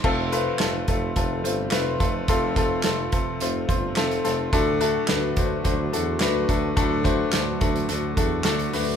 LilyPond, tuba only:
\new Staff \with { instrumentName = "Tuba" } { \clef bass \time 4/4 \key f \lydian \tempo 4 = 107 f,,4 f,,8 f,,8 f,,8 g,,8 f,,8 f,,8 | f,,4 f,,8 r8 f,,8 g,,8 f,,8 f,,8 | d,4 d,8 d,8 d,8 e,8 d,8 d,8 | d,4 d,8 d,8 d,8 e,8 d,8 d,8 | }